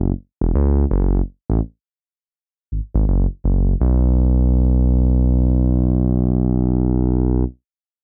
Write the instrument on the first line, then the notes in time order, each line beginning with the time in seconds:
analog synth bass
Already playing: F#1
0.41 E1
0.55 C#2
0.91 F#1
1.50 A1
2.72 G#1
2.95 G#1
3.08 F#1
3.44 F#1
3.81 B1